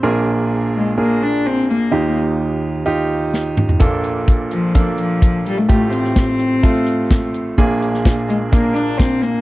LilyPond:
<<
  \new Staff \with { instrumentName = "Grand piano" } { \time 4/4 \key bes \major \tempo 4 = 127 <d' aes' bes'>4. r8 <d' aes' bes'>4. r8 | <ees' f' g'>4. r8 <ees' f' g'>4. r8 | <bes d' a'>4. r8 <bes d' a'>4. r8 | <a f' g'>4. r8 <a f' a'>4. r8 |
<bes d' aes'>4. r8 <bes d' bes'>4. r8 | }
  \new Staff \with { instrumentName = "Grand piano" } { \clef bass \time 4/4 \key bes \major <bes,, bes,>1 | <ees, ees>1 | <bes,, bes,>1 | <a,, a,>1 |
<bes,, bes,>1 | }
  \new Staff \with { instrumentName = "Cello" } { \time 4/4 \key bes \major r4. aes8 bes8 d'8 c'8 bes8~ | bes8 r2. r8 | r4. f4 f4 g16 a16 | a8 c'2. r8 |
r4. aes8 bes8 d'8 c'8 bes8 | }
  \new DrumStaff \with { instrumentName = "Drums" } \drummode { \time 4/4 r4 r4 r4 r4 | r4 r4 r4 sn8 toml16 tomfh16 | <hh bd>8 hh8 <hh bd>8 hh8 <hh bd>8 hh8 <hh bd>8 hh8 | <hh bd>8 hh16 sn16 <hh bd sn>8 hh8 <hh bd>8 hh8 <hh bd sn>8 hh8 |
<hh bd>8 hh16 sn16 <hh bd sn>8 hh8 <hh bd>8 hh8 <hh bd sn>8 hh8 | }
>>